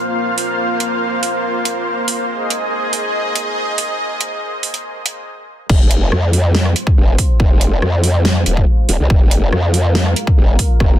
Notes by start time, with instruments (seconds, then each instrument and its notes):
Already playing: supersaw synth A#3 F4 C5 F5
0.38 open hi-hat
0.80 closed hi-hat
1.23 open hi-hat
1.65 closed hi-hat
2.08 open hi-hat
2.29 supersaw synth G#4 D#5
2.50 closed hi-hat
2.93 open hi-hat
3.35 closed hi-hat
3.78 open hi-hat
4.21 closed hi-hat
4.63 open hi-hat
4.74 closed hi-hat
5.06 closed hi-hat
5.69 wobble bass F1, supersaw synth G#3 F4 C5 F5, kick, crash
5.91 closed hi-hat
6.12 wobble bass F2, cross-stick
6.33 open hi-hat
6.55 snare
6.65 cross-stick
6.76 closed hi-hat
6.87 kick
6.97 wobble bass F1
7.18 kick, open hi-hat
7.40 wobble bass F1, kick
7.61 closed hi-hat
7.82 wobble bass F2, cross-stick
8.04 open hi-hat
8.25 snare
8.46 wobble bass D#1, closed hi-hat
8.57 kick
8.89 wobble bass D#1, open hi-hat
8.99 wobble bass C2
9.10 wobble bass F1, supersaw synth A#4, kick
9.31 closed hi-hat
9.53 wobble bass F2, cross-stick
9.74 open hi-hat
9.95 snare
10.06 cross-stick
10.16 closed hi-hat
10.27 kick
10.38 wobble bass F1
10.59 kick, open hi-hat
10.80 wobble bass F1, kick, cross-stick